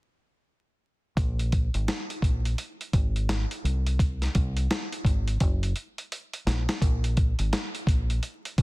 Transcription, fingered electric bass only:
1.17 A#1
1.74 G#1
2.22 A#1
2.93 G#1
3.64 C2
4.35 C2
5.05 G#1
5.41 F#1
6.46 A#1
6.82 A#1
7.39 G#1
7.87 A#1
8.58 G#1

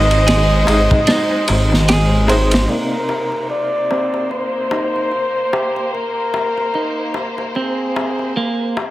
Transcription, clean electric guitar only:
0.27 G#4
1.07 D#4
1.89 G#4
2.29 C5
2.70 A#3
3.91 C4
4.72 D#4
5.53 G4
6.75 D#4
7.56 C4
8.37 A#3

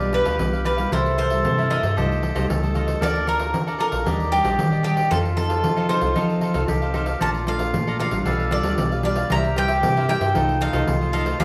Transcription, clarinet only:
Already playing: G4
0.92 A4
1.97 G4
2.49 A4
3.02 A#4
4.06 G4
5.11 F4
6.68 G4
7.20 F4
8.25 A4
9.30 G4
10.35 D#4
10.87 F4
11.40 G#4

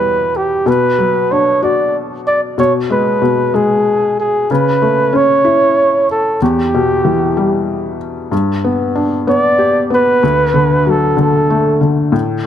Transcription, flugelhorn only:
Already playing: B4
0.37 G4
0.68 B4
1.32 C#5
1.63 D5
2.27 D5
2.60 C#5
2.92 B4
3.55 G#4
4.20 G#4
4.52 B4
5.16 C#5
6.11 A4
6.43 G4
9.29 D5
9.94 B4
10.90 A4
11.21 A4

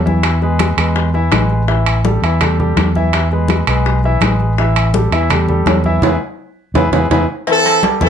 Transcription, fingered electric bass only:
Already playing: E2
0.77 E2
1.31 A1
2.22 E2
2.76 E2
3.67 B1
4.21 A1
5.11 E2
5.66 E2
6.02 E2
6.74 E2
6.92 E2
7.10 E2
8.01 E2

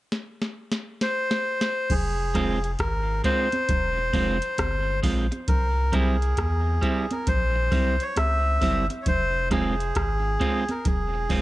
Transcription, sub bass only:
1.91 F1
2.80 G#1
3.70 E1
4.14 F1
4.60 G1
5.04 A#1
5.49 C2
6.39 E2
7.28 A#1
7.72 C2
8.18 C#2
8.62 G1
9.07 F1
9.97 G#1
10.86 E1
11.31 F1

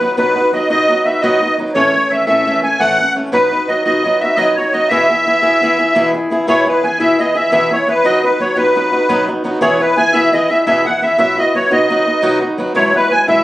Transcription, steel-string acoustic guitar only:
0.00 F#3 B3 D#4 F#4
0.17 B2 F#3 B3 D#4 F#4
0.36 B3 D#4 F#4
0.52 F#3 B3 D#4 F#4
0.70 B2 F#3 B3 D#4 F#4
0.89 F#3 B3 D#4 F#4
1.05 B3 D#4 F#4
1.23 B2 F#3 B3 D#4 F#4
1.42 B3 D#4
1.58 F#3 B3 D#4 F#4
1.75 A2 E3 A3 C#4 A4
1.93 A3 C#4 A4
2.10 E3 A3 C#4 A4
2.27 A2 E3 A3 C#4 A4
2.46 E3 A3 C#4 A4
2.62 A3 C#4 A4
2.80 A2 E3 A3 C#4 A4
2.98 A3 C#4 A4
3.15 E3 A3 C#4 A4
3.32 B2 F#3 B3 D#4 F#4
3.51 B3 D#4 F#4
3.68 F#3 B3 D#4 F#4
3.85 B2 F#3 B3 D#4 F#4
4.04 F#3 B3 D#4 F#4
4.21 B3 D#4 F#4
4.37 B2 F#3 B3 D#4 F#4
4.57 B3 D#4 F#4
4.73 F#3 B3 D#4 F#4
4.91 E2 B2 E3 B3 E4 G#4
5.09 E3 B3 E4 G#4
5.26 E3 B3 E4 G#4
5.42 E2 B2 E3 B3 E4 G#4
5.62 E3 B3 E4 G#4
5.78 E3 B3 E4 G#4
5.95 E2 B2 E3 B3 E4 G#4
6.14 E3 B3 E4 G#4
6.30 E3 B3 E4 G#4
6.47 E2 B2 E3 B3 E4 G#4
6.66 E3 B3 E4 G#4
6.83 E3 B3 E4 G#4
7.00 E2 B2 E3 B3 E4 G#4
7.19 E3 B3 E4 G#4
7.35 E3 B3 E4 G#4
7.51 E2 B2 E3 B3 E4 G#4
7.71 E3 B3 E4 G#4
7.87 E3 B3 E4 G#4
8.04 B2 F#3 B3 D#4 F#4
8.23 B3 D#4 F#4
8.39 F#3 B3 D#4 F#4
8.56 B2 F#3 B3 D#4 F#4
8.75 F#3 B3 D#4 F#4
8.92 B3 D#4 F#4
9.09 B2 F#3 B3 D#4 F#4
9.27 B3 D#4 F#4
9.44 F#3 B3 D#4 F#4
9.61 E2 B2 E3 B3 E4 G#4
9.79 E3 B3 E4 G#4
9.96 E3 B3 E4 G#4
10.14 E2 B2 E3 B3 E4 G#4
10.32 E3 B3 E4 G#4
10.50 E3 B3 E4 G#4
10.67 E2 B2 E3 B3 E4 G#4
10.85 E3 B3 E4 G#4
11.02 E3 B3 E4 G#4
11.18 B2 F#3 B3 E4 F#4
11.38 B3 E4 F#4
11.54 F#3 B3 E4 F#4
11.71 B2 F#3 B3 D#4 F#4
11.89 F#3 B3 D#4 F#4
12.06 B3 D#4 F#4
12.22 B2 F#3 B3 D#4 F#4
12.41 B3 D#4 F#4
12.58 F#3 B3 D#4 F#4
12.74 E2 B2 F#3 G#3 B3 E4
12.94 F#3 G#3 B3 E4
13.10 F#3 G#3 B3 E4
13.28 E2 B2 F#3 G#3 B3 E4

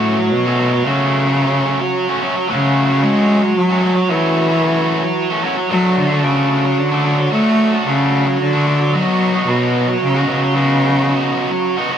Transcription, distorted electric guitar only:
Already playing: F#3 A3 C#4 F#4
0.19 muted distorted electric guitar stroke
0.45 A3 C#4 F#4
0.59 F#3 A3 C#4 F#4
0.73 muted distorted electric guitar stroke
0.86 F#3 A3 C#4 F#4
1.26 A3 C#4 F#4
1.40 F#3 A3 C#4 F#4
1.80 muted distorted electric guitar stroke
2.08 A3 C#4 F#4
2.21 F#3 A3 C#4 F#4
2.35 muted distorted electric guitar stroke
2.49 F#3 A3 C#4 F#4
2.89 A3 C#4 F#4
3.02 F#3 A3 C#4 F#4
3.42 muted distorted electric guitar stroke
3.69 A3 C#4 F#4
3.82 F#3 A3 C#4 F#4
3.95 muted distorted electric guitar stroke
4.09 F#3 A3 C#4 F#4
4.49 A3 C#4 F#4
4.62 F#3 A3 C#4 F#4
5.03 muted distorted electric guitar stroke
5.30 A3 C#4 F#4
5.43 F#3 A3 C#4 F#4
5.57 muted distorted electric guitar stroke
5.70 F#3 A3 D4 F#4
6.10 A3 D4 F#4
6.23 F#3 A3 D4 F#4
6.65 muted distorted electric guitar stroke
6.91 A3 D4 F#4
7.04 F#3 A3 D4 F#4
7.18 muted distorted electric guitar stroke
7.31 F#3 A3 D4 F#4
7.72 A3 D4 F#4
7.86 F#3 A3 D4 F#4
8.27 muted distorted electric guitar stroke
8.53 A3 D4 F#4
8.66 F#3 A3 D4 F#4
8.80 muted distorted electric guitar stroke
8.93 F#3 B3 D#4 F#4
9.33 B3 D#4 F#4
9.47 F#3 B3 D#4 F#4
9.88 muted distorted electric guitar stroke
10.14 B3 D#4 F#4
10.28 F#3 B3 D#4 F#4
10.42 muted distorted electric guitar stroke
10.55 F#3 B3 D#4 F#4
10.97 B3 D#4 F#4
11.10 F#3 B3 D#4 F#4
11.51 muted distorted electric guitar stroke
11.77 B3 D#4 F#4
11.90 F#3 B3 D#4 F#4

